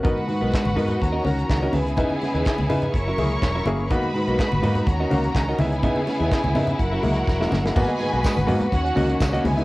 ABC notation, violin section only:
X:1
M:4/4
L:1/8
Q:1/4=124
K:G#m
V:1 name="Violin section"
[Ff]4 [Aa]3 [Gg]- | [Gg]4 [cc']4 | [Bb]4 [Aa]3 [Gg]- | [Gg]4 [Ff]4 |
[Gg]3 z [Ff]2 z [Gg] |]